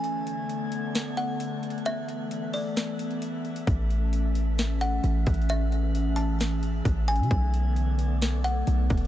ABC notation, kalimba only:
X:1
M:4/4
L:1/8
Q:1/4=132
K:A
V:1 name="Kalimba"
z4 z f z2 | e3 d z4 | z4 z f z2 | e3 a z3 g |
z4 z f z2 |]